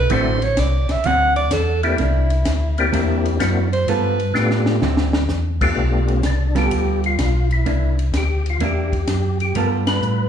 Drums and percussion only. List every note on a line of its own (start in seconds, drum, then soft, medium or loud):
0.10 ride medium
0.42 ride medium
0.57 snare medium
0.57 hi-hat pedal medium
0.57 ride medium
0.89 snare soft
0.89 ride medium
1.04 ride medium
1.36 ride soft
1.51 snare medium
1.51 hi-hat pedal medium
1.51 ride medium
1.83 ride soft
1.98 ride medium
2.30 ride medium
2.45 snare medium
2.45 hi-hat pedal medium
2.45 ride medium
2.78 ride medium
2.93 ride medium
3.25 ride medium
3.40 snare medium
3.40 hi-hat pedal medium
3.40 ride medium
3.73 ride soft
3.88 ride medium
4.20 ride soft
4.35 snare medium
4.35 hi-hat pedal medium
4.51 snare medium
4.66 snare medium
4.82 snare medium
4.97 snare medium
5.13 snare loud
5.29 snare medium
5.29 hi-hat pedal medium
5.61 kick medium
5.61 crash medium
6.08 ride soft
6.23 snare medium
6.23 hi-hat pedal medium
6.23 ride medium
6.56 snare medium
6.56 ride soft
6.71 ride medium
7.04 ride soft
7.19 snare medium
7.19 hi-hat pedal medium
7.19 ride medium
7.51 ride soft
7.66 ride medium
7.99 ride soft
8.14 snare medium
8.14 hi-hat pedal medium
8.14 ride medium
8.46 ride soft
8.60 ride medium
8.93 kick soft
8.93 ride soft
9.07 snare medium
9.07 hi-hat pedal medium
9.07 ride medium
9.40 ride soft
9.55 ride medium
9.87 snare medium
9.87 ride medium
10.02 hi-hat pedal medium